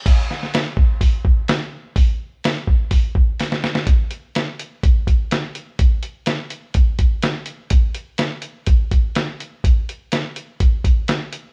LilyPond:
\new DrumStaff \with { instrumentName = "Drums" } \drummode { \time 4/4 \tempo 4 = 125 <cymc hho bd>8 sn16 sn16 <hho sn>8 bd8 <hho bd>8 bd8 <hho sn>4 | <hho bd>4 <hho sn>8 bd8 <hho bd>8 bd8 <hho sn>16 sn16 sn16 sn16 | <hh bd>8 hh8 <hh sn>8 hh8 <hh bd>8 <hh bd>8 <hh sn>8 hh8 | <hh bd>8 hh8 <hh sn>8 hh8 <hh bd>8 <hh bd>8 <hh sn>8 hh8 |
<hh bd>8 hh8 <hh sn>8 hh8 <hh bd>8 <hh bd>8 <hh sn>8 hh8 | <hh bd>8 hh8 <hh sn>8 hh8 <hh bd>8 <hh bd>8 <hh sn>8 hh8 | }